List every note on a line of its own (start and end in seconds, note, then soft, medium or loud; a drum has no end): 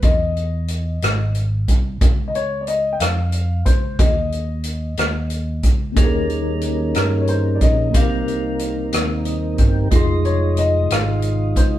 0.02 0.98 E2 medium
0.02 1.32 D#5 medium
0.02 kick medium
0.02 closed hi-hat medium
0.37 closed hi-hat soft
0.68 closed hi-hat soft
1.02 1.64 G#1 medium
1.02 cross-stick medium
1.02 closed hi-hat medium
1.35 closed hi-hat soft
1.68 1.99 C2 medium
1.68 kick medium
1.68 closed hi-hat soft
2.01 2.96 C#2 medium
2.01 kick medium
2.01 closed hi-hat medium
2.28 2.34 D#5 medium
2.35 2.62 C#5 medium
2.35 closed hi-hat soft
2.61 2.68 D5 soft
2.67 2.94 D#5 medium
2.67 closed hi-hat soft
2.93 3.00 G5 medium
3.00 3.62 F2 medium
3.00 3.62 F5 medium
3.00 cross-stick medium
3.00 closed hi-hat medium
3.32 closed hi-hat soft
3.66 3.96 C#2 medium
3.66 3.96 C5 medium
3.66 kick medium
3.66 closed hi-hat soft
3.99 4.94 D#2 medium
3.99 5.60 D#5 medium
3.99 kick medium
3.99 closed hi-hat medium
4.32 closed hi-hat soft
4.64 closed hi-hat soft
4.97 5.60 D#2 medium
4.97 cross-stick medium
4.97 closed hi-hat medium
5.30 closed hi-hat soft
5.63 5.94 C#2 medium
5.63 kick medium
5.63 closed hi-hat soft
5.92 6.91 D#3 medium
5.92 7.88 A#3 soft
5.92 7.89 C#4 medium
5.96 6.91 D#2 medium
5.96 7.91 G3 medium
5.96 7.90 C#4 medium
5.96 7.90 D#4 soft
5.96 7.91 D#4 soft
5.96 7.92 G4 medium
5.96 6.05 G#4 medium
5.96 7.91 A#4 medium
5.96 kick medium
5.96 closed hi-hat medium
6.07 7.96 A#4 medium
6.30 closed hi-hat soft
6.62 closed hi-hat soft
6.95 7.57 G2 medium
6.95 7.19 A#4 medium
6.95 cross-stick medium
6.95 closed hi-hat medium
7.21 7.28 C#5 soft
7.27 7.55 C5 medium
7.27 closed hi-hat soft
7.55 7.62 D5 medium
7.61 7.94 A#1 medium
7.61 7.96 D#5 medium
7.61 kick medium
7.61 closed hi-hat soft
7.90 8.89 C3 soft
7.90 9.86 A#3 soft
7.90 9.87 C4 soft
7.90 9.88 D#4 soft
7.90 kick medium
7.94 8.89 C2 medium
7.94 9.88 G3 soft
7.94 9.88 C4 soft
7.94 9.88 D#4 soft
7.94 9.89 G4 soft
7.94 9.88 A#4 soft
7.94 9.90 A#4 medium
7.94 9.23 F5 medium
7.94 closed hi-hat medium
8.28 closed hi-hat soft
8.59 closed hi-hat medium
8.93 9.55 D#2 medium
8.93 cross-stick medium
8.93 closed hi-hat medium
9.25 9.57 D#5 medium
9.25 closed hi-hat soft
9.58 9.89 G1 medium
9.58 9.89 G5 medium
9.58 kick medium
9.58 closed hi-hat soft
9.88 10.86 F1 medium
9.88 11.79 C3 medium
9.88 9.98 G3 soft
9.88 11.79 D#4 medium
9.88 11.79 F4 medium
9.88 11.79 D#5 medium
9.88 kick medium
9.88 closed hi-hat medium
9.92 11.79 F4 medium
9.92 11.79 G#4 medium
9.92 11.79 C6 medium
9.98 11.79 G#3 medium
10.25 10.59 C#5 medium
10.25 closed hi-hat soft
10.57 10.89 D#5 medium
10.57 closed hi-hat medium
10.90 11.52 G#1 medium
10.90 11.59 F5 medium
10.90 cross-stick medium
10.90 closed hi-hat medium
11.22 closed hi-hat soft
11.56 11.79 C#2 medium
11.56 11.64 C5 medium
11.56 kick medium
11.56 closed hi-hat soft